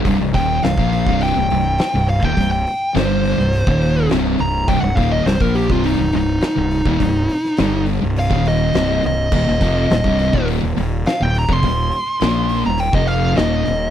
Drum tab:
CC |----------------|----------------|----------------|----------------|
HH |o-o-o-o-o-o-o-o-|o-o-o-o-o-o-o-o-|o-o-o-o-o-o-o-o-|o-o-o-o-o-o-o-o-|
SD |----o-------o---|----o--o----o---|----o-------o---|---oo-------o---|
BD |o-o--o-o-------o|o--------o------|o-o--o-o-------o|o--------o------|

CC |x---------------|----------------|
HH |--o-o-o-o-o-o-o-|o-o-o-o-o-o-o-o-|
SD |----o-------o---|----o-------o---|
BD |o-o--o-o-------o|o--------o------|